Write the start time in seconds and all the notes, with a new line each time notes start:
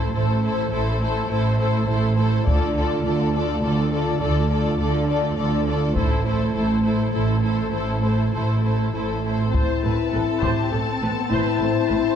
Already playing: A3 E4 A4 C5
0.14 A1 A2 A3 E4 A4 C5
0.43 A3 E4 A4 C5
0.71 A1 A2 A3 E4 A4 C5
1.01 A3 E4 A4 C5
1.29 A1 A2 A3 E4 A4 C5
1.60 A3 E4 A4 C5
1.88 A1 A2 A3 E4 A4 C5
2.18 A3 E4 A4 C5
2.47 D2 D3 A3 F4 A4 D5, taiko
2.77 A3 F4 A4 D5
3.04 D2 D3 A3 F4 A4 D5
3.34 A3 F4 A4 D5
3.63 D2 D3 A3 F4 A4 D5
3.92 A3 F4 A4 D5
4.21 D2 D3 A3 F4 A4 D5
4.50 A3 F4 A4 D5
4.79 D2 D3 A3 F4 A4 D5
5.08 A3 F4 A4 D5
5.37 D2 D3 A3 F4 A4 D5
5.67 A3 F4 A4 D5
5.96 A1 A2 A3 E4 A4 C5, taiko
6.26 A3 E4 A4 C5
6.55 A1 A2 A3 E4 A4 C5
6.84 A3 E4 A4 C5
7.13 A1 A2 A3 E4 A4 C5
7.43 A3 E4 A4 C5
7.72 A1 A2 A3 E4 A4 C5
8.03 A3 E4 A4 C5
8.33 A1 A2 A3 E4 A4 C5
8.64 A3 E4 A4 C5
8.94 A1 A2 A3 E4 A4 C5
9.25 A3 E4 A4 C5
9.53 A1 A2 C4 E4 C5 A5, taiko
9.83 A1 A2 A4 B4
10.13 A1 A2 A4 B4
10.42 A1 A2 G4 C5, taiko
10.72 A1 A2 A3 A4
10.92 C4
11.01 A1 A2 B4
11.11 B3
11.30 A1 A2 E4 B4 C5
11.60 A1 A2 A4 C5
11.90 A1 A2 B4